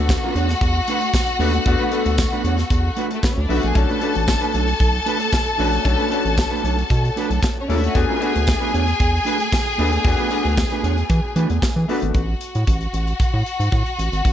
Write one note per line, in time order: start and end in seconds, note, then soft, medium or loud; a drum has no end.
0.00 0.17 D2 medium
0.00 1.39 A3 medium
0.00 1.40 B3 medium
0.00 1.40 D4 medium
0.00 1.41 F#4 medium
0.00 3.06 F#4 medium
0.00 0.60 A4 medium
0.00 3.05 F#5 loud
0.09 muted clean electric guitar stroke soft
0.09 kick loud
0.09 snare loud
0.09 tambourine loud
0.23 0.34 A3 medium
0.23 0.34 D4 medium
0.23 0.35 F#4 medium
0.23 0.36 B4 medium
0.35 0.55 E2 medium
0.35 0.51 A3 medium
0.35 0.49 D4 medium
0.35 0.49 F#4 medium
0.35 0.49 C#5 medium
0.35 closed hi-hat medium
0.49 muted clean electric guitar stroke soft
0.49 snare soft
0.49 closed hi-hat soft
0.61 0.81 E2 medium
0.61 kick loud
0.61 closed hi-hat medium
0.76 muted clean electric guitar stroke soft
0.88 1.07 A3 medium
0.88 1.01 D4 medium
0.88 1.01 F#4 medium
0.88 1.00 B4 medium
0.88 closed hi-hat medium
1.01 muted clean electric guitar stroke soft
1.01 closed hi-hat soft
1.14 kick loud
1.14 snare medium
1.14 tambourine loud
1.27 muted clean electric guitar stroke soft
1.27 closed hi-hat soft
1.39 1.59 D#2 medium
1.39 1.59 A3 medium
1.39 1.59 B3 medium
1.39 1.53 D4 loud
1.39 1.60 D4 medium
1.39 1.53 F#4 medium
1.39 1.60 F#4 medium
1.39 1.52 B4 medium
1.39 open hi-hat medium
1.53 muted clean electric guitar stroke soft
1.53 closed hi-hat soft
1.65 1.76 E2 loud
1.65 1.85 A3 medium
1.65 1.85 B3 medium
1.65 1.86 D4 medium
1.65 1.86 F#4 medium
1.65 muted clean electric guitar stroke soft
1.65 kick loud
1.65 closed hi-hat medium
1.79 1.90 A3 medium
1.79 1.91 D4 medium
1.79 1.91 F#4 medium
1.79 1.92 B4 medium
1.91 2.07 A3 medium
1.91 2.68 A3 medium
1.91 2.68 B3 medium
1.91 2.05 D4 medium
1.91 2.69 D4 medium
1.91 2.05 F#4 medium
1.91 2.69 A4 medium
1.91 2.04 B4 medium
1.91 closed hi-hat medium
2.05 2.26 D2 medium
2.05 muted clean electric guitar stroke medium
2.05 closed hi-hat soft
2.18 muted clean electric guitar stroke soft
2.18 kick loud
2.18 snare loud
2.18 tambourine loud
2.31 2.43 A3 medium
2.31 2.43 D4 medium
2.31 2.44 F#4 medium
2.31 2.45 B4 medium
2.31 closed hi-hat soft
2.44 2.64 E2 medium
2.44 2.60 A3 medium
2.44 2.58 D4 medium
2.44 2.57 F#4 medium
2.44 2.57 C#5 medium
2.44 closed hi-hat medium
2.57 muted clean electric guitar stroke soft
2.57 snare soft
2.57 closed hi-hat soft
2.70 2.90 E2 medium
2.70 kick medium
2.70 closed hi-hat medium
2.85 muted clean electric guitar stroke soft
2.96 3.16 A3 medium
2.96 3.11 D4 medium
2.96 3.10 F#4 medium
2.96 3.10 B4 medium
2.96 closed hi-hat medium
3.11 3.23 A3 medium
3.11 3.23 A4 medium
3.11 muted clean electric guitar stroke soft
3.11 closed hi-hat soft
3.23 3.32 B3 medium
3.23 3.32 B4 medium
3.23 muted clean electric guitar stroke soft
3.23 kick loud
3.23 snare loud
3.23 tambourine loud
3.32 3.41 C#4 medium
3.32 3.40 C#5 medium
3.37 3.46 D2 medium
3.37 3.49 D4 medium
3.37 3.49 D5 medium
3.37 muted clean electric guitar stroke soft
3.49 3.60 B1 medium
3.49 3.68 A3 medium
3.49 3.69 B3 medium
3.49 3.62 D4 medium
3.49 3.69 D4 medium
3.49 3.58 E4 medium
3.49 3.62 F#4 medium
3.49 3.69 F#4 medium
3.49 3.62 B4 medium
3.49 3.58 E5 medium
3.49 open hi-hat medium
3.56 3.66 F#4 medium
3.56 3.66 F#5 medium
3.63 3.73 A#1 medium
3.63 3.75 G#4 medium
3.63 3.75 G#5 loud
3.63 muted clean electric guitar stroke soft
3.63 closed hi-hat soft
3.74 3.86 B1 loud
3.74 3.95 A3 medium
3.74 3.95 C#4 medium
3.74 3.95 D4 medium
3.74 3.96 F#4 medium
3.74 7.51 A4 medium
3.74 7.51 A5 loud
3.74 muted clean electric guitar stroke soft
3.74 kick loud
3.74 closed hi-hat medium
3.89 3.99 A3 medium
3.89 4.00 D4 medium
3.89 4.00 F#4 medium
3.89 4.01 B4 medium
3.89 closed hi-hat soft
4.01 4.17 A3 medium
4.01 4.78 A3 medium
4.01 4.78 C#4 medium
4.01 4.15 D4 medium
4.01 4.78 D4 medium
4.01 4.14 F#4 medium
4.01 4.79 F#4 medium
4.01 4.13 B4 medium
4.01 closed hi-hat medium
4.15 4.35 A1 medium
4.15 muted clean electric guitar stroke soft
4.15 closed hi-hat soft
4.27 muted clean electric guitar stroke soft
4.27 kick medium
4.27 snare loud
4.27 tambourine medium
4.41 4.52 A3 medium
4.41 4.52 D4 medium
4.41 4.53 F#4 medium
4.41 4.54 B4 medium
4.41 closed hi-hat soft
4.53 4.74 B1 medium
4.53 4.69 A3 medium
4.53 4.67 D4 medium
4.53 4.67 F#4 medium
4.53 4.67 C#5 medium
4.53 closed hi-hat medium
4.67 muted clean electric guitar stroke soft
4.67 closed hi-hat soft
4.80 5.00 B1 medium
4.80 kick medium
4.80 closed hi-hat medium
4.93 muted clean electric guitar stroke soft
4.93 closed hi-hat soft
5.06 5.26 A3 medium
5.06 5.19 D4 medium
5.06 5.19 F#4 medium
5.06 5.19 B4 medium
5.06 closed hi-hat medium
5.20 muted clean electric guitar stroke soft
5.20 closed hi-hat medium
5.31 muted clean electric guitar stroke soft
5.31 kick loud
5.31 snare loud
5.31 tambourine loud
5.46 muted clean electric guitar stroke soft
5.58 5.79 A#1 medium
5.58 5.78 A3 medium
5.58 5.78 C#4 medium
5.58 5.71 D4 medium
5.58 5.78 D4 medium
5.58 5.71 F#4 medium
5.58 5.79 F#4 medium
5.58 5.70 B4 medium
5.58 open hi-hat medium
5.71 muted clean electric guitar stroke soft
5.71 closed hi-hat medium
5.84 5.96 B1 loud
5.84 6.04 A3 medium
5.84 6.04 C#4 medium
5.84 6.05 D4 medium
5.84 6.05 F#4 medium
5.84 muted clean electric guitar stroke soft
5.84 kick medium
5.84 closed hi-hat medium
5.98 6.08 A3 medium
5.98 6.09 D4 medium
5.98 6.10 F#4 medium
5.98 6.10 B4 medium
5.98 closed hi-hat soft
6.10 6.26 A3 medium
6.10 6.87 A3 medium
6.10 6.87 C#4 medium
6.10 6.24 D4 medium
6.10 6.88 D4 medium
6.10 6.23 F#4 medium
6.10 6.88 F#4 medium
6.10 6.23 B4 medium
6.10 closed hi-hat medium
6.24 6.45 A1 medium
6.24 muted clean electric guitar stroke soft
6.24 closed hi-hat soft
6.37 muted clean electric guitar stroke soft
6.37 kick loud
6.37 snare loud
6.37 tambourine medium
6.50 6.62 A3 medium
6.50 6.63 D4 medium
6.50 6.64 F#4 medium
6.50 6.65 B4 medium
6.64 6.84 B1 medium
6.64 6.79 A3 soft
6.64 6.77 D4 medium
6.64 6.77 F#4 medium
6.64 6.77 C#5 medium
6.64 closed hi-hat medium
6.78 muted clean electric guitar stroke soft
6.78 closed hi-hat soft
6.90 7.10 B2 loud
6.90 kick loud
6.90 closed hi-hat medium
7.04 muted clean electric guitar stroke soft
7.04 closed hi-hat soft
7.16 7.36 A3 medium
7.16 7.31 D4 medium
7.16 7.30 F#4 medium
7.16 7.30 B4 medium
7.16 closed hi-hat medium
7.30 7.39 B1 medium
7.30 muted clean electric guitar stroke soft
7.30 closed hi-hat medium
7.43 muted clean electric guitar stroke soft
7.43 kick loud
7.43 snare loud
7.43 tambourine loud
7.57 7.69 C#4 medium
7.57 7.69 C#5 medium
7.57 muted clean electric guitar stroke medium
7.68 7.89 D#2 medium
7.68 7.88 A3 medium
7.68 7.89 A3 medium
7.68 7.88 C#4 medium
7.68 7.77 D4 medium
7.68 7.88 D4 medium
7.68 7.82 D4 medium
7.68 7.82 F#4 medium
7.68 7.89 A4 medium
7.68 7.81 B4 medium
7.68 7.77 D5 medium
7.68 open hi-hat medium
7.77 7.86 E4 medium
7.77 7.86 E5 medium
7.83 7.95 F#4 medium
7.83 7.95 F#5 loud
7.83 muted clean electric guitar stroke soft
7.83 closed hi-hat soft
7.94 8.05 E2 loud
7.94 8.14 A3 medium
7.94 8.14 B3 medium
7.94 8.14 D4 medium
7.94 8.15 F#4 loud
7.94 11.84 G#4 loud
7.94 11.84 G#5 loud
7.94 muted clean electric guitar stroke soft
7.94 kick medium
7.94 closed hi-hat medium
8.08 8.19 A3 medium
8.08 8.20 D4 medium
8.08 8.20 F#4 medium
8.08 8.21 B4 medium
8.20 8.97 A3 medium
8.20 8.36 A3 medium
8.20 8.98 B3 medium
8.20 8.34 D4 medium
8.20 8.98 D4 medium
8.20 8.34 F#4 medium
8.20 8.98 F#4 medium
8.20 8.33 B4 medium
8.20 closed hi-hat medium
8.35 8.55 D2 medium
8.35 muted clean electric guitar stroke soft
8.35 closed hi-hat soft
8.46 muted clean electric guitar stroke soft
8.46 kick loud
8.46 snare loud
8.46 tambourine loud
8.60 8.71 A3 medium
8.60 8.72 D4 medium
8.60 8.72 F#4 medium
8.60 8.74 B4 medium
8.72 8.94 E2 medium
8.72 8.89 A3 medium
8.72 8.86 D4 medium
8.72 8.87 F#4 medium
8.72 8.87 C#5 medium
8.72 closed hi-hat medium
8.87 muted clean electric guitar stroke medium
8.87 closed hi-hat soft
9.00 9.20 E2 medium
9.00 kick loud
9.00 closed hi-hat medium
9.13 muted clean electric guitar stroke soft
9.25 9.45 A3 medium
9.25 9.39 D4 medium
9.25 9.38 F#4 medium
9.25 9.38 B4 medium
9.25 closed hi-hat medium
9.39 muted clean electric guitar stroke soft
9.39 closed hi-hat soft
9.51 muted clean electric guitar stroke soft
9.51 kick loud
9.51 snare loud
9.51 tambourine loud
9.65 muted clean electric guitar stroke soft
9.78 9.99 D#2 medium
9.78 9.98 A3 medium
9.78 9.98 B3 medium
9.78 9.91 D4 medium
9.78 9.99 D4 medium
9.78 9.91 F#4 medium
9.78 9.99 G#4 medium
9.78 9.90 B4 medium
9.78 open hi-hat medium
9.91 muted clean electric guitar stroke soft
9.91 closed hi-hat medium
10.04 10.15 E2 loud
10.04 10.24 A3 medium
10.04 10.24 B3 medium
10.04 10.25 D4 medium
10.04 10.25 F#4 medium
10.04 muted clean electric guitar stroke soft
10.04 kick loud
10.04 closed hi-hat medium
10.18 10.29 A3 medium
10.18 10.29 D4 medium
10.18 10.30 F#4 medium
10.18 10.30 B4 medium
10.18 closed hi-hat soft
10.30 11.07 A3 medium
10.30 10.46 A3 medium
10.30 11.08 B3 medium
10.30 10.44 D4 medium
10.30 11.08 D4 medium
10.30 10.44 F#4 medium
10.30 11.08 F#4 medium
10.30 10.44 B4 medium
10.30 closed hi-hat medium
10.45 10.65 D2 medium
10.45 muted clean electric guitar stroke soft
10.45 closed hi-hat soft
10.57 muted clean electric guitar stroke soft
10.57 kick loud
10.57 snare loud
10.57 tambourine loud
10.71 10.82 A3 medium
10.71 10.83 D4 medium
10.71 10.83 F#4 medium
10.71 10.84 B4 medium
10.71 closed hi-hat soft
10.83 11.03 E2 medium
10.83 10.99 A3 medium
10.83 10.97 D4 medium
10.83 10.97 F#4 medium
10.83 10.97 C#5 medium
10.83 closed hi-hat medium
10.98 muted clean electric guitar stroke medium
10.98 closed hi-hat soft
11.10 11.20 E3 loud
11.10 kick loud
11.10 closed hi-hat medium
11.24 muted clean electric guitar stroke soft
11.36 11.46 E3 loud
11.36 11.55 A3 medium
11.36 11.50 D4 medium
11.36 11.50 F#4 medium
11.36 11.49 B4 medium
11.36 closed hi-hat medium
11.50 11.59 E2 medium
11.50 muted clean electric guitar stroke medium
11.50 closed hi-hat soft
11.62 muted clean electric guitar stroke soft
11.62 kick loud
11.62 snare loud
11.62 tambourine medium
11.76 11.86 E3 medium
11.76 muted clean electric guitar stroke soft
11.88 12.08 A3 medium
11.88 12.08 B3 medium
11.88 12.02 D4 medium
11.88 12.08 D4 medium
11.88 12.02 F#4 medium
11.88 12.09 F#4 medium
11.88 12.01 B4 loud
11.88 open hi-hat medium
12.02 12.12 G#1 medium
12.02 muted clean electric guitar stroke soft
12.02 closed hi-hat medium
12.14 12.35 A1 medium
12.14 14.33 F#4 medium
12.14 14.33 F#5 medium
12.14 kick loud
12.14 closed hi-hat medium
12.41 closed hi-hat medium
12.55 12.65 A2 medium
12.55 closed hi-hat soft
12.67 12.87 A1 medium
12.67 kick medium
12.67 closed hi-hat medium
12.81 closed hi-hat soft
12.94 13.14 A1 medium
12.94 closed hi-hat medium
13.07 closed hi-hat soft
13.20 13.26 A2 soft
13.20 kick medium
13.20 closed hi-hat medium
13.34 13.43 A2 medium
13.46 closed hi-hat medium
13.60 13.69 G#2 medium
13.60 closed hi-hat soft
13.72 13.83 A2 medium
13.72 kick loud
13.72 closed hi-hat medium
13.86 closed hi-hat soft
13.99 14.09 A1 medium
13.99 closed hi-hat medium
14.12 14.22 G#1 medium
14.12 closed hi-hat soft
14.25 14.33 A1 medium
14.25 kick medium
14.25 closed hi-hat medium